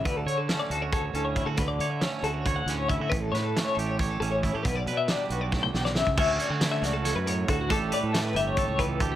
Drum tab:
CC |--------------|--------------|--------------|--------------|
HH |x-x-x-x-x-x-x-|x-x-x-x-x-x-x-|x-x-x-x-x-x-x-|x-x-x-x-------|
SD |----o---------|----o-----o---|--o-o---------|----o---o-ooo-|
T1 |--------------|--------------|--------------|---------o----|
BD |o-------o---o-|o-------o---o-|o-------o---o-|o-------o----o|

CC |x-------------|--------------|
HH |--x-x-x-x-x-x-|x-x-x-x-x-x-x-|
SD |----o-o-o-----|----o---------|
T1 |--------------|--------------|
BD |o-----------o-|o-------o-o-o-|